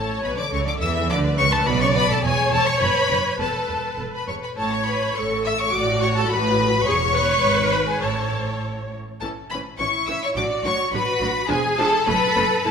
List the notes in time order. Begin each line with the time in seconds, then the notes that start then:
Already playing: A1 A2 A4 C#5 A5
0.22 B1 B2 B4 B5
0.35 D3 D5 D6
0.50 C#2 C#3 A4 C#5 C#6
0.65 D3 D5 D6
0.80 E2 E3 E5 E6
1.08 D2 D3 B4 D5 D6
1.37 C#2 C#3 C#5 C#6
1.51 A2 A4 A5
1.65 B1 B2 B4 D5 B5
1.80 C#3 C#5 C#6
1.94 B1 B2 B4 B5
2.08 A2 A4 A5
2.22 E1 E2 G#4 C#5 G#5
2.51 E1 E2 A4 A5
2.66 C#5 C#6
2.79 F#1 F#2 B4 B5
3.09 F#1 F#2
3.38 E1 E2 A4 B4 A5
3.68 E1 E2
3.98 E1 E2
4.12 B4 B5
4.27 E1 E2 C#5 C#6
4.41 B4 B5
4.57 A1 A2 A4 C#5 A5
4.73 C#5 C#6
4.86 B4 B5
5.15 A1 A2 A4 C#5 C#6
5.45 E5 E6
5.60 C#5 C#6
5.71 A1 A2 F#4 D6
5.76 D5
6.02 C#5 C#6
6.17 A4 A5
6.29 A1 A2 B4 B5
6.86 E1 E2 G#4 C#5 C#6
7.14 B4
7.43 G#1 G#2
7.73 B4 B5
7.88 G#4 G#5
8.02 A1 A2 A4 C#5 A5
9.20 A1 E3 C#4 A4 A5
9.50 A1 E3 C#4 B4 B5
9.78 A1 E3 C#4 E4 C#5 C#6
10.07 A1 E3 C#4 E5 E6
10.23 C#5 C#6
10.35 A1 F#3 D4 F#4 D5 D6
10.64 A1 F#3 D4 C#5 C#6
10.92 A1 F#3 D4 F#4 B4 B5
11.21 A1 F#3 D4
11.49 E1 F3 D4 G#4 G#5
11.78 E1 F3 D4 A4 A5
12.06 F#1 A3 C#4 A4 B4 B5
12.36 F#1 A3 C#4
12.64 E1 A3 E4 A4 B4 A5